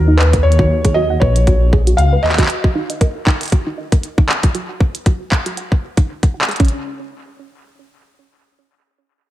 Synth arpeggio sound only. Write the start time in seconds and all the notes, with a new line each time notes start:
0.08 D#4
0.19 D#5
0.33 A#4
0.59 F#4
0.85 G#4
0.96 F#4
1.10 F#5
1.21 B4
1.47 F#4
1.73 G#4
1.87 F#4
1.98 F#5
2.13 B4
2.38 F#4
2.64 F#4
2.75 D#4
2.90 D#5
3.01 A#4
3.27 D#4
3.52 F#4
3.67 D#4
3.78 D#5
3.92 A#4
4.18 D#4
4.44 F#4
4.55 F#4
4.69 F#5
4.80 B4
5.06 F#4
5.32 G#4
5.46 F#4
5.57 F#5
5.72 B4
5.97 D#4
6.23 F#5
6.34 F#5
6.49 G#4
6.60 C#4